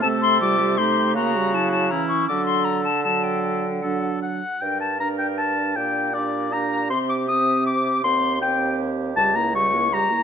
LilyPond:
<<
  \new Staff \with { instrumentName = "Flute" } { \time 3/4 \key g \minor \tempo 4 = 159 a''8 c'''8 d'''4 c'''4 | ais''4 a''8 a''8 ais''8 cis'''8 | d'''8 c'''8 bes''8 a''8 a''8 g''8 | g''4 fis''4 fis''4 |
g''8 a''8 bes''8 g''8 a''4 | g''4 d''4 bes''4 | c'''8 d'''8 ees'''4 d'''4 | c'''4 g''4 r4 |
a''8 ais''8 cis'''4 ais''4 | }
  \new Staff \with { instrumentName = "Oboe" } { \time 3/4 \key g \minor a'2 g'4 | fis'2 e'4 | a'2 a'4~ | a'4 a'4 fis''4 |
g''8 a''8 bes''8 g''8 a''4 | g''4 d''4 bes''4 | c'''8 d'''8 ees'''4 d'''4 | c'''4 g''4 r4 |
a''8 ais''8 cis'''4 ais''4 | }
  \new Staff \with { instrumentName = "Clarinet" } { \time 3/4 \key g \minor c'4 f'4 ees'4 | fis'4 e'4 cis'4 | d'2 d'4~ | d'4 d'4. r8 |
bes'4 bes'2 | g'4 g'4 g'4 | g'4 g'2 | g'4 g'2 |
g'8 e'8 g'8 e'8 g'8 e'8 | }
  \new Staff \with { instrumentName = "French horn" } { \time 3/4 \key g \minor a4 g8 g8 a4 | ais8 g8 fis4 e4 | fis2 fis4~ | fis4 fis4. r8 |
d'4 d'2 | d'4 d'4 d'4 | c'4 c'2 | c'4 c'2 |
g8 ais8 g8 ais8 g8 ais8 | }
  \new Staff \with { instrumentName = "Bassoon" } { \clef bass \time 3/4 \key g \minor c2. | cis2. | d2.~ | d2~ d8 r8 |
g,2. | bes,2. | c2. | ees,2. |
cis,2. | }
>>